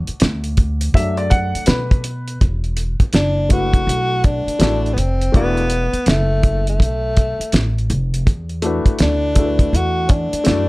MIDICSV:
0, 0, Header, 1, 6, 480
1, 0, Start_track
1, 0, Tempo, 731707
1, 1584, Time_signature, 4, 2, 24, 8
1, 7011, End_track
2, 0, Start_track
2, 0, Title_t, "Upright piano"
2, 0, Program_c, 0, 0
2, 0, Note_on_c, 0, 57, 46
2, 0, Note_on_c, 0, 62, 58
2, 0, Note_on_c, 0, 66, 53
2, 594, Note_off_c, 0, 66, 0
2, 595, Note_off_c, 0, 57, 0
2, 598, Note_off_c, 0, 62, 0
2, 621, Note_on_c, 0, 54, 55
2, 622, Note_on_c, 0, 76, 92
2, 623, Note_on_c, 0, 57, 52
2, 626, Note_on_c, 0, 62, 56
2, 764, Note_off_c, 0, 76, 0
2, 771, Note_on_c, 0, 74, 92
2, 854, Note_on_c, 0, 78, 106
2, 855, Note_off_c, 0, 74, 0
2, 1082, Note_off_c, 0, 78, 0
2, 1096, Note_on_c, 0, 71, 85
2, 1316, Note_off_c, 0, 54, 0
2, 1317, Note_off_c, 0, 57, 0
2, 1318, Note_off_c, 0, 62, 0
2, 1553, Note_off_c, 0, 71, 0
2, 2290, Note_on_c, 0, 57, 54
2, 2294, Note_on_c, 0, 62, 48
2, 2302, Note_on_c, 0, 64, 52
2, 2309, Note_on_c, 0, 66, 54
2, 2316, Note_on_c, 0, 71, 57
2, 2981, Note_off_c, 0, 57, 0
2, 2983, Note_off_c, 0, 62, 0
2, 2987, Note_off_c, 0, 64, 0
2, 2991, Note_off_c, 0, 66, 0
2, 2994, Note_off_c, 0, 71, 0
2, 3010, Note_on_c, 0, 57, 62
2, 3017, Note_on_c, 0, 62, 60
2, 3020, Note_on_c, 0, 64, 60
2, 3030, Note_on_c, 0, 66, 64
2, 3034, Note_on_c, 0, 69, 66
2, 3204, Note_off_c, 0, 57, 0
2, 3207, Note_off_c, 0, 62, 0
2, 3209, Note_off_c, 0, 64, 0
2, 3214, Note_off_c, 0, 66, 0
2, 3216, Note_off_c, 0, 69, 0
2, 3491, Note_on_c, 0, 57, 71
2, 3496, Note_on_c, 0, 62, 64
2, 3504, Note_on_c, 0, 64, 59
2, 3511, Note_on_c, 0, 66, 66
2, 3516, Note_on_c, 0, 74, 74
2, 3684, Note_off_c, 0, 57, 0
2, 3687, Note_off_c, 0, 62, 0
2, 3690, Note_off_c, 0, 64, 0
2, 3694, Note_off_c, 0, 66, 0
2, 3696, Note_off_c, 0, 74, 0
2, 5656, Note_on_c, 0, 57, 73
2, 5662, Note_on_c, 0, 62, 66
2, 5670, Note_on_c, 0, 64, 67
2, 5675, Note_on_c, 0, 66, 67
2, 5682, Note_on_c, 0, 71, 73
2, 6124, Note_off_c, 0, 57, 0
2, 6130, Note_off_c, 0, 62, 0
2, 6134, Note_on_c, 0, 57, 61
2, 6138, Note_off_c, 0, 64, 0
2, 6140, Note_on_c, 0, 62, 47
2, 6144, Note_off_c, 0, 66, 0
2, 6148, Note_on_c, 0, 64, 54
2, 6153, Note_on_c, 0, 66, 53
2, 6161, Note_on_c, 0, 69, 51
2, 6194, Note_off_c, 0, 71, 0
2, 6204, Note_on_c, 0, 71, 60
2, 6206, Note_off_c, 0, 69, 0
2, 6823, Note_off_c, 0, 57, 0
2, 6826, Note_off_c, 0, 62, 0
2, 6830, Note_off_c, 0, 64, 0
2, 6833, Note_off_c, 0, 66, 0
2, 6847, Note_on_c, 0, 57, 73
2, 6853, Note_on_c, 0, 62, 62
2, 6858, Note_off_c, 0, 71, 0
2, 6860, Note_on_c, 0, 64, 58
2, 6865, Note_on_c, 0, 66, 62
2, 6872, Note_on_c, 0, 74, 75
2, 7011, Note_off_c, 0, 57, 0
2, 7011, Note_off_c, 0, 62, 0
2, 7011, Note_off_c, 0, 64, 0
2, 7011, Note_off_c, 0, 66, 0
2, 7011, Note_off_c, 0, 74, 0
2, 7011, End_track
3, 0, Start_track
3, 0, Title_t, "Tenor saxophone"
3, 0, Program_c, 1, 66
3, 2066, Note_on_c, 1, 62, 96
3, 2312, Note_on_c, 1, 66, 107
3, 2322, Note_off_c, 1, 62, 0
3, 2790, Note_on_c, 1, 62, 104
3, 2799, Note_off_c, 1, 66, 0
3, 3239, Note_on_c, 1, 59, 64
3, 3249, Note_off_c, 1, 62, 0
3, 3277, Note_on_c, 1, 60, 83
3, 3286, Note_off_c, 1, 59, 0
3, 3510, Note_off_c, 1, 60, 0
3, 3520, Note_on_c, 1, 59, 98
3, 3993, Note_on_c, 1, 57, 81
3, 4003, Note_off_c, 1, 59, 0
3, 4379, Note_off_c, 1, 57, 0
3, 4391, Note_on_c, 1, 57, 89
3, 5076, Note_off_c, 1, 57, 0
3, 5924, Note_on_c, 1, 62, 99
3, 6403, Note_on_c, 1, 66, 100
3, 6413, Note_off_c, 1, 62, 0
3, 6611, Note_on_c, 1, 61, 67
3, 6621, Note_off_c, 1, 66, 0
3, 6635, Note_on_c, 1, 62, 91
3, 6644, Note_off_c, 1, 61, 0
3, 7011, Note_off_c, 1, 62, 0
3, 7011, End_track
4, 0, Start_track
4, 0, Title_t, "Upright bass"
4, 0, Program_c, 2, 32
4, 142, Note_on_c, 2, 38, 97
4, 598, Note_off_c, 2, 38, 0
4, 616, Note_on_c, 2, 42, 96
4, 991, Note_off_c, 2, 42, 0
4, 1100, Note_on_c, 2, 47, 91
4, 1557, Note_off_c, 2, 47, 0
4, 1581, Note_on_c, 2, 28, 88
4, 1954, Note_off_c, 2, 28, 0
4, 2057, Note_on_c, 2, 30, 91
4, 2516, Note_off_c, 2, 30, 0
4, 2539, Note_on_c, 2, 35, 85
4, 2913, Note_off_c, 2, 35, 0
4, 3015, Note_on_c, 2, 33, 82
4, 3247, Note_off_c, 2, 33, 0
4, 3257, Note_on_c, 2, 29, 84
4, 3488, Note_off_c, 2, 29, 0
4, 3505, Note_on_c, 2, 28, 83
4, 3876, Note_off_c, 2, 28, 0
4, 3979, Note_on_c, 2, 30, 92
4, 4437, Note_off_c, 2, 30, 0
4, 4462, Note_on_c, 2, 35, 85
4, 4834, Note_off_c, 2, 35, 0
4, 4941, Note_on_c, 2, 33, 86
4, 5170, Note_off_c, 2, 33, 0
4, 5182, Note_on_c, 2, 29, 94
4, 5411, Note_off_c, 2, 29, 0
4, 5422, Note_on_c, 2, 40, 88
4, 5795, Note_off_c, 2, 40, 0
4, 5904, Note_on_c, 2, 38, 83
4, 6360, Note_off_c, 2, 38, 0
4, 6383, Note_on_c, 2, 40, 87
4, 6755, Note_off_c, 2, 40, 0
4, 6868, Note_on_c, 2, 42, 90
4, 7011, Note_off_c, 2, 42, 0
4, 7011, End_track
5, 0, Start_track
5, 0, Title_t, "Muted upright bass strokes"
5, 52, Note_on_c, 9, 29, 50
5, 118, Note_off_c, 9, 29, 0
5, 1015, Note_on_c, 9, 29, 46
5, 1081, Note_off_c, 9, 29, 0
5, 1967, Note_on_c, 9, 29, 47
5, 2033, Note_off_c, 9, 29, 0
5, 2929, Note_on_c, 9, 29, 46
5, 2994, Note_off_c, 9, 29, 0
5, 3889, Note_on_c, 9, 29, 48
5, 3955, Note_off_c, 9, 29, 0
5, 4851, Note_on_c, 9, 29, 42
5, 4916, Note_off_c, 9, 29, 0
5, 5809, Note_on_c, 9, 29, 44
5, 5874, Note_off_c, 9, 29, 0
5, 6776, Note_on_c, 9, 29, 41
5, 6842, Note_off_c, 9, 29, 0
5, 7011, End_track
6, 0, Start_track
6, 0, Title_t, "Drums"
6, 48, Note_on_c, 9, 42, 46
6, 114, Note_off_c, 9, 42, 0
6, 131, Note_on_c, 9, 42, 75
6, 143, Note_on_c, 9, 38, 106
6, 196, Note_off_c, 9, 42, 0
6, 209, Note_off_c, 9, 38, 0
6, 287, Note_on_c, 9, 42, 40
6, 352, Note_off_c, 9, 42, 0
6, 375, Note_on_c, 9, 42, 64
6, 379, Note_on_c, 9, 36, 81
6, 440, Note_off_c, 9, 42, 0
6, 444, Note_off_c, 9, 36, 0
6, 531, Note_on_c, 9, 42, 56
6, 597, Note_off_c, 9, 42, 0
6, 618, Note_on_c, 9, 36, 92
6, 634, Note_on_c, 9, 42, 90
6, 684, Note_off_c, 9, 36, 0
6, 700, Note_off_c, 9, 42, 0
6, 770, Note_on_c, 9, 42, 36
6, 836, Note_off_c, 9, 42, 0
6, 859, Note_on_c, 9, 42, 88
6, 863, Note_on_c, 9, 36, 97
6, 925, Note_off_c, 9, 42, 0
6, 928, Note_off_c, 9, 36, 0
6, 1018, Note_on_c, 9, 42, 59
6, 1083, Note_off_c, 9, 42, 0
6, 1089, Note_on_c, 9, 42, 88
6, 1101, Note_on_c, 9, 38, 119
6, 1155, Note_off_c, 9, 42, 0
6, 1166, Note_off_c, 9, 38, 0
6, 1254, Note_on_c, 9, 36, 89
6, 1261, Note_on_c, 9, 42, 34
6, 1320, Note_off_c, 9, 36, 0
6, 1327, Note_off_c, 9, 42, 0
6, 1338, Note_on_c, 9, 42, 82
6, 1403, Note_off_c, 9, 42, 0
6, 1493, Note_on_c, 9, 42, 47
6, 1559, Note_off_c, 9, 42, 0
6, 1583, Note_on_c, 9, 36, 105
6, 1583, Note_on_c, 9, 42, 67
6, 1648, Note_off_c, 9, 36, 0
6, 1648, Note_off_c, 9, 42, 0
6, 1731, Note_on_c, 9, 42, 31
6, 1797, Note_off_c, 9, 42, 0
6, 1815, Note_on_c, 9, 42, 79
6, 1881, Note_off_c, 9, 42, 0
6, 1967, Note_on_c, 9, 36, 78
6, 1967, Note_on_c, 9, 42, 52
6, 2033, Note_off_c, 9, 36, 0
6, 2033, Note_off_c, 9, 42, 0
6, 2051, Note_on_c, 9, 42, 77
6, 2063, Note_on_c, 9, 38, 104
6, 2117, Note_off_c, 9, 42, 0
6, 2129, Note_off_c, 9, 38, 0
6, 2296, Note_on_c, 9, 42, 69
6, 2299, Note_on_c, 9, 36, 84
6, 2362, Note_off_c, 9, 42, 0
6, 2365, Note_off_c, 9, 36, 0
6, 2450, Note_on_c, 9, 36, 87
6, 2452, Note_on_c, 9, 42, 49
6, 2516, Note_off_c, 9, 36, 0
6, 2517, Note_off_c, 9, 42, 0
6, 2553, Note_on_c, 9, 42, 91
6, 2619, Note_off_c, 9, 42, 0
6, 2781, Note_on_c, 9, 42, 73
6, 2784, Note_on_c, 9, 36, 92
6, 2846, Note_off_c, 9, 42, 0
6, 2850, Note_off_c, 9, 36, 0
6, 2940, Note_on_c, 9, 42, 51
6, 3006, Note_off_c, 9, 42, 0
6, 3015, Note_on_c, 9, 42, 83
6, 3027, Note_on_c, 9, 38, 105
6, 3081, Note_off_c, 9, 42, 0
6, 3093, Note_off_c, 9, 38, 0
6, 3189, Note_on_c, 9, 42, 28
6, 3254, Note_off_c, 9, 42, 0
6, 3265, Note_on_c, 9, 42, 70
6, 3331, Note_off_c, 9, 42, 0
6, 3421, Note_on_c, 9, 42, 39
6, 3487, Note_off_c, 9, 42, 0
6, 3505, Note_on_c, 9, 36, 102
6, 3506, Note_on_c, 9, 42, 67
6, 3571, Note_off_c, 9, 36, 0
6, 3571, Note_off_c, 9, 42, 0
6, 3656, Note_on_c, 9, 42, 32
6, 3721, Note_off_c, 9, 42, 0
6, 3737, Note_on_c, 9, 42, 77
6, 3803, Note_off_c, 9, 42, 0
6, 3893, Note_on_c, 9, 42, 51
6, 3959, Note_off_c, 9, 42, 0
6, 3976, Note_on_c, 9, 42, 77
6, 3989, Note_on_c, 9, 38, 112
6, 4042, Note_off_c, 9, 42, 0
6, 4054, Note_off_c, 9, 38, 0
6, 4220, Note_on_c, 9, 42, 61
6, 4222, Note_on_c, 9, 36, 82
6, 4286, Note_off_c, 9, 42, 0
6, 4287, Note_off_c, 9, 36, 0
6, 4376, Note_on_c, 9, 42, 52
6, 4442, Note_off_c, 9, 42, 0
6, 4460, Note_on_c, 9, 36, 90
6, 4475, Note_on_c, 9, 42, 88
6, 4525, Note_off_c, 9, 36, 0
6, 4540, Note_off_c, 9, 42, 0
6, 4701, Note_on_c, 9, 42, 75
6, 4705, Note_on_c, 9, 36, 89
6, 4766, Note_off_c, 9, 42, 0
6, 4770, Note_off_c, 9, 36, 0
6, 4861, Note_on_c, 9, 42, 57
6, 4926, Note_off_c, 9, 42, 0
6, 4936, Note_on_c, 9, 42, 79
6, 4947, Note_on_c, 9, 38, 108
6, 5001, Note_off_c, 9, 42, 0
6, 5013, Note_off_c, 9, 38, 0
6, 5107, Note_on_c, 9, 42, 30
6, 5172, Note_off_c, 9, 42, 0
6, 5181, Note_on_c, 9, 42, 63
6, 5247, Note_off_c, 9, 42, 0
6, 5339, Note_on_c, 9, 42, 50
6, 5405, Note_off_c, 9, 42, 0
6, 5424, Note_on_c, 9, 36, 96
6, 5425, Note_on_c, 9, 42, 76
6, 5490, Note_off_c, 9, 36, 0
6, 5491, Note_off_c, 9, 42, 0
6, 5572, Note_on_c, 9, 42, 32
6, 5638, Note_off_c, 9, 42, 0
6, 5656, Note_on_c, 9, 42, 82
6, 5722, Note_off_c, 9, 42, 0
6, 5810, Note_on_c, 9, 36, 86
6, 5812, Note_on_c, 9, 42, 49
6, 5876, Note_off_c, 9, 36, 0
6, 5878, Note_off_c, 9, 42, 0
6, 5895, Note_on_c, 9, 42, 78
6, 5907, Note_on_c, 9, 38, 102
6, 5960, Note_off_c, 9, 42, 0
6, 5973, Note_off_c, 9, 38, 0
6, 6137, Note_on_c, 9, 42, 67
6, 6141, Note_on_c, 9, 36, 81
6, 6203, Note_off_c, 9, 42, 0
6, 6206, Note_off_c, 9, 36, 0
6, 6292, Note_on_c, 9, 36, 83
6, 6293, Note_on_c, 9, 42, 59
6, 6357, Note_off_c, 9, 36, 0
6, 6359, Note_off_c, 9, 42, 0
6, 6393, Note_on_c, 9, 42, 81
6, 6459, Note_off_c, 9, 42, 0
6, 6619, Note_on_c, 9, 42, 80
6, 6624, Note_on_c, 9, 36, 100
6, 6685, Note_off_c, 9, 42, 0
6, 6689, Note_off_c, 9, 36, 0
6, 6777, Note_on_c, 9, 42, 59
6, 6843, Note_off_c, 9, 42, 0
6, 6854, Note_on_c, 9, 42, 81
6, 6865, Note_on_c, 9, 38, 106
6, 6919, Note_off_c, 9, 42, 0
6, 6931, Note_off_c, 9, 38, 0
6, 7011, End_track
0, 0, End_of_file